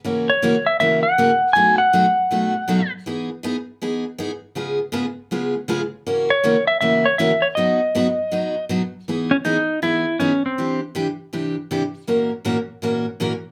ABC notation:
X:1
M:4/4
L:1/16
Q:"Swing" 1/4=160
K:E
V:1 name="Electric slide guitar"
z2 c4 e2 e2 f6 | g2 f12 z2 | z16 | z16 |
z2 c4 e2 e2 c2 e2 c2 | d12 z4 | z2 C2 D4 E4 C2 =C2- | =C2 z12 z2 |
z16 |]
V:2 name="Steel-string acoustic guitar"
[C,E,^A,CF]2 z2 [C,E,A,CF] z3 [C,E,A,CF]2 z2 [C,E,A,CF] z3 | [B,,F,A,DF]2 z2 [B,,F,A,DF] z3 [B,,F,A,DF]2 z2 [B,,F,A,DF] z3 | [E,B,DG]2 z2 [E,B,DG] z3 [E,B,DG]2 z2 [E,B,DG] z3 | [C,G,B,^EG]2 z2 [C,G,B,EG] z3 [C,G,B,EG]2 z2 [C,G,B,EG] z3 |
[C,E,^A,CF]2 z2 [C,E,A,CF] z3 [C,E,A,CF]2 z2 [C,E,A,CF] z3 | [B,,F,B,DF]2 z2 [B,,F,B,DF] z3 [B,,F,B,DF]2 z2 [B,,F,B,DF] z3 | [E,B,DG]2 z2 [E,B,DG] z3 [E,B,DG]2 z2 [E,B,DG] z3 | [=C,E,=D=G]2 z2 [C,E,DG] z3 [C,E,DG]2 z2 [C,E,DG] z3 |
[^A,,E,^A,CF^A]2 z2 [A,,E,A,CFA] z3 [A,,E,A,CFA]2 z2 [A,,E,A,CFA] z3 |]